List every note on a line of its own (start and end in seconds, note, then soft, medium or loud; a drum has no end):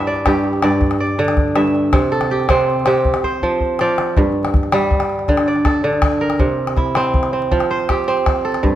0.00 0.25 G2 medium
0.00 1.29 D4 medium
0.00 1.08 E4 medium
0.00 0.26 G4 medium
0.00 0.27 A4 medium
0.00 0.13 A#4 medium
0.00 0.92 E5 medium
0.07 0.63 D5 medium
0.16 calabash click soft
0.26 0.62 G2 medium
0.26 1.68 G4 medium
0.26 calabash thump medium
0.26 calabash click medium
0.35 calabash click soft
0.44 calabash click soft
0.53 calabash click soft
0.62 1.55 G2 medium
0.62 1.00 D5 medium
0.62 calabash click medium
0.81 calabash thump medium
0.91 calabash click soft
1.00 2.11 D5 medium
1.18 1.98 D3 medium
1.18 calabash click soft
1.28 calabash click soft
1.37 calabash thump medium
1.37 calabash click soft
1.56 1.98 G2 medium
1.56 2.59 E5 medium
1.56 calabash click medium
1.75 calabash click soft
1.93 2.48 C3 medium
1.93 calabash thump medium
1.93 calabash click medium
2.12 3.44 A4 medium
2.12 calabash click soft
2.21 calabash click soft
2.30 2.87 G4 medium
2.30 calabash click soft
2.40 calabash click soft
2.49 2.86 C3 medium
2.49 4.30 C4 medium
2.49 calabash thump medium
2.49 calabash click medium
2.58 calabash click soft
2.86 3.10 C3 medium
2.86 4.28 G4 medium
2.86 calabash click medium
2.95 calabash click soft
3.05 calabash thump medium
3.14 calabash click medium
3.23 4.43 C5 medium
3.23 calabash thump soft
3.42 3.80 F3 medium
3.42 calabash thump soft
3.60 calabash thump soft
3.79 4.22 F3 medium
3.79 4.92 D5 medium
3.79 calabash click soft
3.98 calabash click medium
4.17 6.45 G2 medium
4.17 calabash thump medium
4.45 calabash click soft
4.54 calabash thump medium
4.54 calabash click soft
4.63 calabash click soft
4.72 5.34 G3 medium
4.72 calabash click medium
4.82 calabash click soft
4.91 calabash thump medium
5.00 calabash click soft
5.10 calabash click soft
5.19 calabash click soft
5.28 5.83 D3 medium
5.28 calabash thump medium
5.28 calabash click soft
5.37 calabash click medium
5.46 6.59 D5 medium
5.46 calabash click soft
5.56 calabash click soft
5.65 6.27 A4 medium
5.65 calabash thump medium
5.65 calabash click medium
5.84 6.45 D3 medium
5.93 calabash click soft
6.02 calabash thump medium
6.02 calabash click medium
6.12 calabash click soft
6.21 7.48 A#4 medium
6.30 calabash click soft
6.39 7.57 C3 medium
6.39 calabash thump medium
6.67 calabash click soft
6.77 7.58 E4 medium
6.77 calabash thump medium
6.77 calabash click soft
6.86 calabash click soft
6.95 7.33 C4 medium
6.95 calabash click medium
7.05 calabash click soft
7.14 calabash thump medium
7.23 calabash click soft
7.33 8.07 C4 medium
7.33 calabash click soft
7.42 calabash click soft
7.51 8.69 F3 medium
7.51 calabash thump soft
7.51 calabash click soft
7.60 calabash click soft
7.70 8.75 C5 medium
7.70 calabash click soft
7.80 calabash click soft
7.89 8.75 G4 medium
7.89 calabash thump medium
7.89 calabash click medium
8.08 8.75 C4 medium
8.17 calabash click soft
8.26 calabash thump medium
8.26 calabash click medium
8.36 calabash click soft
8.45 8.75 A4 medium
8.54 calabash click soft
8.63 8.75 G2 medium
8.63 calabash thump medium